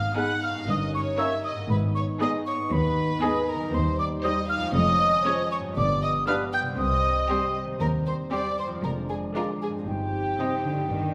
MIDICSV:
0, 0, Header, 1, 11, 480
1, 0, Start_track
1, 0, Tempo, 509338
1, 1603, Time_signature, 4, 2, 24, 8
1, 7363, Tempo, 516796
1, 10454, End_track
2, 0, Start_track
2, 0, Title_t, "Flute"
2, 0, Program_c, 0, 73
2, 0, Note_on_c, 0, 89, 77
2, 161, Note_off_c, 0, 89, 0
2, 167, Note_on_c, 0, 90, 75
2, 401, Note_off_c, 0, 90, 0
2, 409, Note_on_c, 0, 89, 71
2, 466, Note_off_c, 0, 89, 0
2, 660, Note_on_c, 0, 87, 81
2, 716, Note_off_c, 0, 87, 0
2, 893, Note_on_c, 0, 85, 80
2, 950, Note_off_c, 0, 85, 0
2, 1118, Note_on_c, 0, 88, 80
2, 1175, Note_off_c, 0, 88, 0
2, 1362, Note_on_c, 0, 87, 64
2, 1419, Note_off_c, 0, 87, 0
2, 1603, Note_on_c, 0, 83, 72
2, 1659, Note_off_c, 0, 83, 0
2, 1837, Note_on_c, 0, 85, 74
2, 1893, Note_off_c, 0, 85, 0
2, 2081, Note_on_c, 0, 87, 77
2, 2138, Note_off_c, 0, 87, 0
2, 2319, Note_on_c, 0, 85, 79
2, 2570, Note_on_c, 0, 83, 86
2, 2584, Note_off_c, 0, 85, 0
2, 3288, Note_on_c, 0, 82, 80
2, 3302, Note_off_c, 0, 83, 0
2, 3528, Note_on_c, 0, 84, 72
2, 3542, Note_off_c, 0, 82, 0
2, 3753, Note_off_c, 0, 84, 0
2, 3758, Note_on_c, 0, 86, 95
2, 3815, Note_off_c, 0, 86, 0
2, 3999, Note_on_c, 0, 87, 84
2, 4055, Note_off_c, 0, 87, 0
2, 4236, Note_on_c, 0, 89, 82
2, 4292, Note_off_c, 0, 89, 0
2, 4468, Note_on_c, 0, 87, 89
2, 5183, Note_off_c, 0, 87, 0
2, 5198, Note_on_c, 0, 85, 77
2, 5254, Note_off_c, 0, 85, 0
2, 5443, Note_on_c, 0, 86, 85
2, 5678, Note_off_c, 0, 86, 0
2, 5684, Note_on_c, 0, 87, 92
2, 5905, Note_off_c, 0, 87, 0
2, 5911, Note_on_c, 0, 89, 80
2, 5967, Note_off_c, 0, 89, 0
2, 6166, Note_on_c, 0, 91, 84
2, 6222, Note_off_c, 0, 91, 0
2, 6393, Note_on_c, 0, 87, 84
2, 7106, Note_off_c, 0, 87, 0
2, 7359, Note_on_c, 0, 82, 86
2, 7414, Note_off_c, 0, 82, 0
2, 7607, Note_on_c, 0, 84, 63
2, 7662, Note_off_c, 0, 84, 0
2, 7827, Note_on_c, 0, 86, 65
2, 8068, Note_off_c, 0, 86, 0
2, 8090, Note_on_c, 0, 84, 60
2, 8146, Note_off_c, 0, 84, 0
2, 8317, Note_on_c, 0, 82, 68
2, 8373, Note_off_c, 0, 82, 0
2, 8552, Note_on_c, 0, 80, 69
2, 8608, Note_off_c, 0, 80, 0
2, 8801, Note_on_c, 0, 82, 62
2, 8856, Note_off_c, 0, 82, 0
2, 9038, Note_on_c, 0, 80, 56
2, 9094, Note_off_c, 0, 80, 0
2, 9276, Note_on_c, 0, 79, 63
2, 10454, Note_off_c, 0, 79, 0
2, 10454, End_track
3, 0, Start_track
3, 0, Title_t, "Violin section"
3, 0, Program_c, 1, 48
3, 0, Note_on_c, 1, 77, 63
3, 157, Note_off_c, 1, 77, 0
3, 161, Note_on_c, 1, 78, 69
3, 398, Note_off_c, 1, 78, 0
3, 404, Note_on_c, 1, 77, 73
3, 641, Note_on_c, 1, 75, 70
3, 644, Note_off_c, 1, 77, 0
3, 883, Note_off_c, 1, 75, 0
3, 891, Note_on_c, 1, 73, 69
3, 1123, Note_off_c, 1, 73, 0
3, 1128, Note_on_c, 1, 76, 76
3, 1363, Note_on_c, 1, 75, 55
3, 1366, Note_off_c, 1, 76, 0
3, 1598, Note_off_c, 1, 75, 0
3, 1604, Note_on_c, 1, 71, 61
3, 1680, Note_off_c, 1, 71, 0
3, 1852, Note_on_c, 1, 73, 64
3, 1927, Note_off_c, 1, 73, 0
3, 2091, Note_on_c, 1, 75, 71
3, 2166, Note_off_c, 1, 75, 0
3, 2320, Note_on_c, 1, 73, 67
3, 2395, Note_off_c, 1, 73, 0
3, 2562, Note_on_c, 1, 71, 82
3, 3267, Note_off_c, 1, 71, 0
3, 3289, Note_on_c, 1, 70, 67
3, 3518, Note_on_c, 1, 72, 61
3, 3525, Note_off_c, 1, 70, 0
3, 3759, Note_off_c, 1, 72, 0
3, 3761, Note_on_c, 1, 74, 62
3, 3837, Note_off_c, 1, 74, 0
3, 3989, Note_on_c, 1, 75, 69
3, 4226, Note_on_c, 1, 77, 83
3, 4230, Note_off_c, 1, 75, 0
3, 4467, Note_on_c, 1, 75, 89
3, 4470, Note_off_c, 1, 77, 0
3, 5182, Note_off_c, 1, 75, 0
3, 5194, Note_on_c, 1, 73, 63
3, 5270, Note_off_c, 1, 73, 0
3, 5426, Note_on_c, 1, 74, 73
3, 5670, Note_off_c, 1, 74, 0
3, 5678, Note_on_c, 1, 75, 67
3, 5754, Note_off_c, 1, 75, 0
3, 5909, Note_on_c, 1, 77, 68
3, 5985, Note_off_c, 1, 77, 0
3, 6153, Note_on_c, 1, 79, 75
3, 6229, Note_off_c, 1, 79, 0
3, 6406, Note_on_c, 1, 75, 74
3, 7113, Note_off_c, 1, 75, 0
3, 7350, Note_on_c, 1, 70, 71
3, 7425, Note_off_c, 1, 70, 0
3, 7599, Note_on_c, 1, 72, 59
3, 7673, Note_off_c, 1, 72, 0
3, 7837, Note_on_c, 1, 74, 72
3, 8073, Note_off_c, 1, 74, 0
3, 8081, Note_on_c, 1, 72, 59
3, 8155, Note_off_c, 1, 72, 0
3, 8313, Note_on_c, 1, 70, 63
3, 8387, Note_off_c, 1, 70, 0
3, 8551, Note_on_c, 1, 68, 51
3, 8626, Note_off_c, 1, 68, 0
3, 8799, Note_on_c, 1, 70, 54
3, 8873, Note_off_c, 1, 70, 0
3, 9040, Note_on_c, 1, 68, 50
3, 9114, Note_off_c, 1, 68, 0
3, 9283, Note_on_c, 1, 67, 54
3, 10454, Note_off_c, 1, 67, 0
3, 10454, End_track
4, 0, Start_track
4, 0, Title_t, "Oboe"
4, 0, Program_c, 2, 68
4, 169, Note_on_c, 2, 71, 43
4, 320, Note_off_c, 2, 71, 0
4, 1118, Note_on_c, 2, 73, 58
4, 1268, Note_off_c, 2, 73, 0
4, 2092, Note_on_c, 2, 75, 47
4, 2243, Note_off_c, 2, 75, 0
4, 3036, Note_on_c, 2, 75, 58
4, 3187, Note_off_c, 2, 75, 0
4, 3997, Note_on_c, 2, 75, 58
4, 4148, Note_off_c, 2, 75, 0
4, 4962, Note_on_c, 2, 73, 66
4, 5113, Note_off_c, 2, 73, 0
4, 5922, Note_on_c, 2, 71, 56
4, 6073, Note_off_c, 2, 71, 0
4, 6877, Note_on_c, 2, 72, 53
4, 7028, Note_off_c, 2, 72, 0
4, 7829, Note_on_c, 2, 72, 48
4, 7977, Note_off_c, 2, 72, 0
4, 8784, Note_on_c, 2, 74, 44
4, 8932, Note_off_c, 2, 74, 0
4, 9760, Note_on_c, 2, 75, 34
4, 9908, Note_off_c, 2, 75, 0
4, 10454, End_track
5, 0, Start_track
5, 0, Title_t, "Violin section"
5, 0, Program_c, 3, 48
5, 155, Note_on_c, 3, 68, 52
5, 517, Note_off_c, 3, 68, 0
5, 1119, Note_on_c, 3, 70, 54
5, 1478, Note_off_c, 3, 70, 0
5, 2084, Note_on_c, 3, 68, 58
5, 2439, Note_off_c, 3, 68, 0
5, 3042, Note_on_c, 3, 68, 70
5, 3399, Note_off_c, 3, 68, 0
5, 3996, Note_on_c, 3, 72, 60
5, 4356, Note_off_c, 3, 72, 0
5, 4960, Note_on_c, 3, 73, 63
5, 5320, Note_off_c, 3, 73, 0
5, 5920, Note_on_c, 3, 71, 57
5, 6279, Note_off_c, 3, 71, 0
5, 6878, Note_on_c, 3, 67, 61
5, 7239, Note_off_c, 3, 67, 0
5, 7832, Note_on_c, 3, 67, 54
5, 8191, Note_off_c, 3, 67, 0
5, 8810, Note_on_c, 3, 65, 50
5, 9161, Note_off_c, 3, 65, 0
5, 9771, Note_on_c, 3, 63, 46
5, 10126, Note_off_c, 3, 63, 0
5, 10454, End_track
6, 0, Start_track
6, 0, Title_t, "French horn section"
6, 0, Program_c, 4, 60
6, 0, Note_on_c, 4, 59, 55
6, 0, Note_on_c, 4, 63, 54
6, 623, Note_off_c, 4, 59, 0
6, 650, Note_on_c, 4, 61, 53
6, 1434, Note_off_c, 4, 61, 0
6, 1434, Note_off_c, 4, 63, 0
6, 1594, Note_on_c, 4, 63, 65
6, 1599, Note_on_c, 4, 59, 68
6, 3481, Note_off_c, 4, 59, 0
6, 3518, Note_on_c, 4, 55, 78
6, 4440, Note_off_c, 4, 63, 0
6, 4461, Note_off_c, 4, 55, 0
6, 4478, Note_on_c, 4, 53, 64
6, 4478, Note_on_c, 4, 61, 64
6, 5442, Note_on_c, 4, 55, 71
6, 5443, Note_off_c, 4, 53, 0
6, 5443, Note_off_c, 4, 61, 0
6, 5445, Note_on_c, 4, 59, 66
6, 6385, Note_off_c, 4, 59, 0
6, 6392, Note_on_c, 4, 60, 56
6, 8280, Note_off_c, 4, 55, 0
6, 8312, Note_off_c, 4, 60, 0
6, 8320, Note_on_c, 4, 62, 44
6, 8325, Note_on_c, 4, 56, 54
6, 9273, Note_on_c, 4, 63, 47
6, 9278, Note_off_c, 4, 62, 0
6, 9281, Note_off_c, 4, 56, 0
6, 9284, Note_on_c, 4, 60, 49
6, 10224, Note_on_c, 4, 59, 43
6, 10224, Note_on_c, 4, 62, 43
6, 10229, Note_off_c, 4, 60, 0
6, 10242, Note_off_c, 4, 63, 0
6, 10454, Note_off_c, 4, 59, 0
6, 10454, Note_off_c, 4, 62, 0
6, 10454, End_track
7, 0, Start_track
7, 0, Title_t, "Harp"
7, 0, Program_c, 5, 46
7, 0, Note_on_c, 5, 44, 48
7, 0, Note_on_c, 5, 59, 39
7, 0, Note_on_c, 5, 63, 38
7, 0, Note_on_c, 5, 68, 35
7, 471, Note_on_c, 5, 43, 58
7, 512, Note_on_c, 5, 61, 45
7, 548, Note_off_c, 5, 63, 0
7, 559, Note_on_c, 5, 63, 48
7, 578, Note_off_c, 5, 44, 0
7, 598, Note_off_c, 5, 59, 0
7, 600, Note_on_c, 5, 70, 45
7, 640, Note_off_c, 5, 68, 0
7, 1431, Note_on_c, 5, 44, 51
7, 1475, Note_on_c, 5, 59, 43
7, 1504, Note_off_c, 5, 63, 0
7, 1516, Note_on_c, 5, 63, 42
7, 1535, Note_off_c, 5, 43, 0
7, 1556, Note_off_c, 5, 61, 0
7, 1558, Note_on_c, 5, 68, 41
7, 1600, Note_off_c, 5, 70, 0
7, 3346, Note_on_c, 5, 51, 53
7, 3391, Note_on_c, 5, 55, 47
7, 3416, Note_off_c, 5, 63, 0
7, 3428, Note_on_c, 5, 63, 44
7, 3454, Note_off_c, 5, 44, 0
7, 3473, Note_on_c, 5, 72, 48
7, 3476, Note_off_c, 5, 59, 0
7, 3518, Note_off_c, 5, 68, 0
7, 4313, Note_on_c, 5, 41, 62
7, 4355, Note_on_c, 5, 56, 54
7, 4398, Note_on_c, 5, 61, 54
7, 4414, Note_off_c, 5, 51, 0
7, 4436, Note_off_c, 5, 55, 0
7, 4443, Note_on_c, 5, 73, 54
7, 4455, Note_off_c, 5, 63, 0
7, 4477, Note_off_c, 5, 72, 0
7, 5273, Note_on_c, 5, 43, 55
7, 5315, Note_on_c, 5, 55, 45
7, 5357, Note_on_c, 5, 62, 45
7, 5379, Note_off_c, 5, 41, 0
7, 5399, Note_on_c, 5, 71, 49
7, 5400, Note_off_c, 5, 56, 0
7, 5422, Note_off_c, 5, 61, 0
7, 5444, Note_off_c, 5, 73, 0
7, 6234, Note_on_c, 5, 48, 55
7, 6266, Note_off_c, 5, 55, 0
7, 6277, Note_on_c, 5, 55, 45
7, 6320, Note_on_c, 5, 60, 49
7, 6337, Note_off_c, 5, 43, 0
7, 6360, Note_on_c, 5, 72, 47
7, 6379, Note_off_c, 5, 62, 0
7, 6401, Note_off_c, 5, 71, 0
7, 7203, Note_on_c, 5, 51, 56
7, 7234, Note_off_c, 5, 55, 0
7, 7245, Note_on_c, 5, 55, 42
7, 7276, Note_off_c, 5, 60, 0
7, 7287, Note_on_c, 5, 60, 46
7, 7301, Note_off_c, 5, 48, 0
7, 7318, Note_off_c, 5, 72, 0
7, 7330, Note_on_c, 5, 72, 43
7, 8159, Note_on_c, 5, 41, 52
7, 8203, Note_on_c, 5, 56, 42
7, 8241, Note_on_c, 5, 65, 43
7, 8257, Note_off_c, 5, 51, 0
7, 8277, Note_off_c, 5, 55, 0
7, 8286, Note_on_c, 5, 74, 44
7, 8298, Note_off_c, 5, 60, 0
7, 8319, Note_off_c, 5, 72, 0
7, 9111, Note_on_c, 5, 43, 38
7, 9154, Note_on_c, 5, 60, 31
7, 9195, Note_on_c, 5, 63, 31
7, 9217, Note_off_c, 5, 41, 0
7, 9238, Note_on_c, 5, 72, 30
7, 9239, Note_off_c, 5, 56, 0
7, 9258, Note_off_c, 5, 65, 0
7, 9281, Note_off_c, 5, 74, 0
7, 10063, Note_off_c, 5, 43, 0
7, 10075, Note_on_c, 5, 43, 40
7, 10118, Note_on_c, 5, 59, 35
7, 10158, Note_on_c, 5, 62, 31
7, 10200, Note_on_c, 5, 74, 34
7, 10202, Note_off_c, 5, 60, 0
7, 10223, Note_off_c, 5, 63, 0
7, 10245, Note_off_c, 5, 72, 0
7, 10454, Note_off_c, 5, 43, 0
7, 10454, Note_off_c, 5, 59, 0
7, 10454, Note_off_c, 5, 62, 0
7, 10454, Note_off_c, 5, 74, 0
7, 10454, End_track
8, 0, Start_track
8, 0, Title_t, "Viola section"
8, 0, Program_c, 6, 48
8, 153, Note_on_c, 6, 59, 53
8, 156, Note_on_c, 6, 63, 63
8, 516, Note_off_c, 6, 59, 0
8, 517, Note_off_c, 6, 63, 0
8, 1123, Note_on_c, 6, 63, 60
8, 1125, Note_on_c, 6, 61, 64
8, 1480, Note_off_c, 6, 63, 0
8, 1481, Note_off_c, 6, 61, 0
8, 2072, Note_on_c, 6, 63, 71
8, 2073, Note_on_c, 6, 59, 69
8, 2433, Note_off_c, 6, 63, 0
8, 2434, Note_off_c, 6, 59, 0
8, 3037, Note_on_c, 6, 59, 70
8, 3039, Note_on_c, 6, 63, 67
8, 3396, Note_off_c, 6, 59, 0
8, 3397, Note_off_c, 6, 63, 0
8, 4007, Note_on_c, 6, 55, 65
8, 4011, Note_on_c, 6, 63, 70
8, 4362, Note_off_c, 6, 55, 0
8, 4365, Note_off_c, 6, 63, 0
8, 4957, Note_on_c, 6, 61, 72
8, 4958, Note_on_c, 6, 56, 59
8, 5318, Note_off_c, 6, 61, 0
8, 5319, Note_off_c, 6, 56, 0
8, 5922, Note_on_c, 6, 62, 73
8, 5923, Note_on_c, 6, 55, 65
8, 6280, Note_off_c, 6, 55, 0
8, 6280, Note_off_c, 6, 62, 0
8, 6885, Note_on_c, 6, 60, 67
8, 6887, Note_on_c, 6, 55, 61
8, 7243, Note_off_c, 6, 60, 0
8, 7244, Note_off_c, 6, 55, 0
8, 7839, Note_on_c, 6, 60, 57
8, 7842, Note_on_c, 6, 55, 57
8, 8195, Note_off_c, 6, 60, 0
8, 8196, Note_off_c, 6, 55, 0
8, 8784, Note_on_c, 6, 50, 44
8, 8784, Note_on_c, 6, 62, 51
8, 9147, Note_off_c, 6, 62, 0
8, 9148, Note_off_c, 6, 50, 0
8, 9756, Note_on_c, 6, 55, 50
8, 9760, Note_on_c, 6, 60, 47
8, 10118, Note_off_c, 6, 55, 0
8, 10120, Note_off_c, 6, 60, 0
8, 10454, End_track
9, 0, Start_track
9, 0, Title_t, "Bassoon"
9, 0, Program_c, 7, 70
9, 157, Note_on_c, 7, 56, 46
9, 308, Note_off_c, 7, 56, 0
9, 1116, Note_on_c, 7, 58, 49
9, 1266, Note_off_c, 7, 58, 0
9, 2076, Note_on_c, 7, 56, 55
9, 2226, Note_off_c, 7, 56, 0
9, 3040, Note_on_c, 7, 56, 55
9, 3191, Note_off_c, 7, 56, 0
9, 4001, Note_on_c, 7, 55, 56
9, 4152, Note_off_c, 7, 55, 0
9, 4968, Note_on_c, 7, 53, 51
9, 5119, Note_off_c, 7, 53, 0
9, 5919, Note_on_c, 7, 55, 51
9, 6070, Note_off_c, 7, 55, 0
9, 6893, Note_on_c, 7, 55, 50
9, 7043, Note_off_c, 7, 55, 0
9, 7835, Note_on_c, 7, 55, 45
9, 7984, Note_off_c, 7, 55, 0
9, 8792, Note_on_c, 7, 56, 42
9, 8940, Note_off_c, 7, 56, 0
9, 9762, Note_on_c, 7, 60, 39
9, 9910, Note_off_c, 7, 60, 0
9, 10454, End_track
10, 0, Start_track
10, 0, Title_t, "Cello section"
10, 0, Program_c, 8, 48
10, 636, Note_on_c, 8, 43, 73
10, 1019, Note_off_c, 8, 43, 0
10, 1596, Note_on_c, 8, 44, 71
10, 1978, Note_off_c, 8, 44, 0
10, 2552, Note_on_c, 8, 39, 82
10, 2936, Note_off_c, 8, 39, 0
10, 3513, Note_on_c, 8, 39, 79
10, 3896, Note_off_c, 8, 39, 0
10, 4477, Note_on_c, 8, 41, 83
10, 4861, Note_off_c, 8, 41, 0
10, 5438, Note_on_c, 8, 43, 69
10, 5820, Note_off_c, 8, 43, 0
10, 6399, Note_on_c, 8, 36, 79
10, 6782, Note_off_c, 8, 36, 0
10, 7367, Note_on_c, 8, 39, 73
10, 7742, Note_off_c, 8, 39, 0
10, 8312, Note_on_c, 8, 41, 62
10, 8693, Note_off_c, 8, 41, 0
10, 9270, Note_on_c, 8, 43, 52
10, 9656, Note_off_c, 8, 43, 0
10, 9758, Note_on_c, 8, 48, 48
10, 9984, Note_off_c, 8, 48, 0
10, 9993, Note_on_c, 8, 50, 50
10, 10240, Note_off_c, 8, 50, 0
10, 10240, Note_on_c, 8, 51, 52
10, 10454, Note_off_c, 8, 51, 0
10, 10454, End_track
11, 0, Start_track
11, 0, Title_t, "Double bass section"
11, 0, Program_c, 10, 48
11, 646, Note_on_c, 10, 31, 64
11, 1024, Note_off_c, 10, 31, 0
11, 1601, Note_on_c, 10, 32, 68
11, 1980, Note_off_c, 10, 32, 0
11, 2560, Note_on_c, 10, 39, 73
11, 2940, Note_off_c, 10, 39, 0
11, 3520, Note_on_c, 10, 39, 82
11, 3899, Note_off_c, 10, 39, 0
11, 4482, Note_on_c, 10, 29, 80
11, 4863, Note_off_c, 10, 29, 0
11, 5438, Note_on_c, 10, 31, 78
11, 5820, Note_off_c, 10, 31, 0
11, 6400, Note_on_c, 10, 36, 74
11, 6782, Note_off_c, 10, 36, 0
11, 7363, Note_on_c, 10, 39, 73
11, 7740, Note_off_c, 10, 39, 0
11, 8323, Note_on_c, 10, 29, 56
11, 8699, Note_off_c, 10, 29, 0
11, 9277, Note_on_c, 10, 31, 57
11, 9660, Note_off_c, 10, 31, 0
11, 10242, Note_on_c, 10, 31, 52
11, 10454, Note_off_c, 10, 31, 0
11, 10454, End_track
0, 0, End_of_file